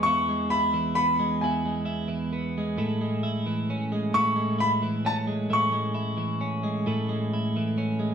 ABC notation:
X:1
M:6/8
L:1/16
Q:3/8=44
K:Alyd
V:1 name="Grand piano"
c'2 b2 b2 g4 z2 | z6 c'2 b2 a2 | c'8 z4 |]
V:2 name="Clean electric guitar" clef=bass
[E,,E,G,B,E] G, E E, B, G, [E,,E] G, E E, B, G, | [A,,E] G, E E, C G, [A,,E] G, E E, C G, | [A,,E] G, E E, C G, [A,,E] G, E E, C G, |]